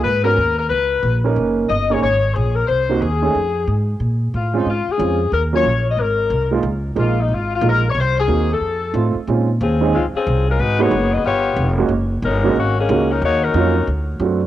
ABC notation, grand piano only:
X:1
M:4/4
L:1/8
Q:"Swing" 1/4=182
K:Bbm
V:1 name="Grand piano"
z [_CDGB] z4 z [B,DEB]- | [B,DEB]2 z [B,DEA] z4 | z [B,CEG] z [=A,DE_A] z4 | z3 [A,CDF] z2 [A,CDF] z |
z [G,B,DF] z4 z [A,B,EF] | z2 [A,B,EF] z3 [A,B,EF] z | z2 [B,CEG] z3 [=A,CEF] z | [A,CDEF] z2 [A,CDEA] z4 |
z [A,B,_CEG] z4 z [A,B,^CEG] | z3 [A,B,DEG] z2 [A,B,DEG] z | z2 [G,B,DEF] z3 [^F,=A,C=D^F] z |]